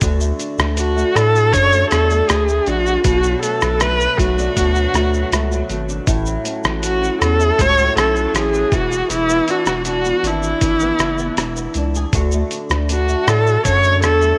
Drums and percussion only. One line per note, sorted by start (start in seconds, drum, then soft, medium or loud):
0.01 kick loud
0.01 closed hi-hat medium
0.01 shaker medium
0.20 shaker medium
0.40 closed hi-hat soft
0.40 shaker medium
0.58 cross-stick loud
0.58 shaker soft
0.77 closed hi-hat medium
0.77 shaker medium
0.97 shaker soft
1.16 cross-stick medium
1.16 closed hi-hat medium
1.16 shaker medium
1.35 shaker soft
1.54 kick medium
1.54 closed hi-hat medium
1.54 shaker medium
1.72 shaker soft
1.91 cross-stick medium
1.91 closed hi-hat medium
1.91 shaker medium
2.10 shaker soft
2.29 cross-stick medium
2.29 closed hi-hat medium
2.29 shaker medium
2.48 shaker medium
2.66 closed hi-hat soft
2.66 shaker soft
2.86 shaker soft
3.04 kick loud
3.04 closed hi-hat medium
3.04 shaker medium
3.23 shaker medium
3.43 closed hi-hat medium
3.43 shaker medium
3.61 cross-stick medium
3.61 shaker medium
3.80 cross-stick medium
3.80 closed hi-hat medium
3.80 shaker medium
4.00 shaker soft
4.18 kick medium
4.18 closed hi-hat medium
4.18 shaker medium
4.38 shaker soft
4.57 kick medium
4.57 closed hi-hat medium
4.57 shaker medium
4.75 shaker soft
4.94 cross-stick medium
4.94 closed hi-hat soft
4.94 shaker medium
5.14 shaker soft
5.32 cross-stick medium
5.32 closed hi-hat medium
5.32 shaker medium
5.52 shaker soft
5.69 closed hi-hat soft
5.69 shaker soft
5.89 shaker medium
6.07 kick loud
6.07 closed hi-hat medium
6.07 shaker medium
6.26 shaker medium
6.45 closed hi-hat medium
6.45 shaker medium
6.64 cross-stick medium
6.64 shaker soft
6.83 closed hi-hat medium
6.83 shaker medium
7.03 shaker soft
7.22 cross-stick medium
7.22 closed hi-hat soft
7.22 shaker medium
7.40 shaker soft
7.59 kick medium
7.59 closed hi-hat medium
7.59 shaker medium
7.77 shaker soft
7.97 cross-stick medium
7.97 closed hi-hat medium
7.97 shaker soft
8.16 shaker soft
8.35 cross-stick medium
8.35 closed hi-hat medium
8.35 shaker medium
8.54 shaker soft
8.72 kick medium
8.72 closed hi-hat soft
8.72 shaker soft
8.92 shaker soft
9.10 closed hi-hat medium
9.10 shaker medium
9.29 shaker medium
9.48 closed hi-hat medium
9.48 shaker medium
9.66 cross-stick medium
9.66 shaker medium
9.85 closed hi-hat medium
9.85 shaker medium
10.05 shaker soft
10.24 closed hi-hat medium
10.24 shaker medium
10.43 shaker medium
10.61 kick medium
10.61 closed hi-hat medium
10.61 shaker medium
10.80 shaker soft
10.99 cross-stick medium
10.99 closed hi-hat soft
10.99 shaker medium
11.18 shaker soft
11.37 cross-stick medium
11.37 closed hi-hat medium
11.37 shaker medium
11.56 shaker soft
11.74 closed hi-hat soft
11.74 shaker soft
11.95 shaker soft
12.13 kick loud
12.13 closed hi-hat medium
12.13 shaker medium
12.31 shaker medium
12.51 closed hi-hat medium
12.51 shaker medium
12.70 cross-stick medium
12.70 shaker soft
12.89 closed hi-hat medium
12.89 shaker medium
13.08 shaker medium
13.28 cross-stick medium
13.28 closed hi-hat medium
13.28 shaker medium
13.46 shaker soft
13.65 kick medium
13.65 closed hi-hat medium
13.65 shaker medium
13.83 shaker soft
14.02 cross-stick medium
14.02 closed hi-hat medium
14.02 shaker medium
14.22 shaker soft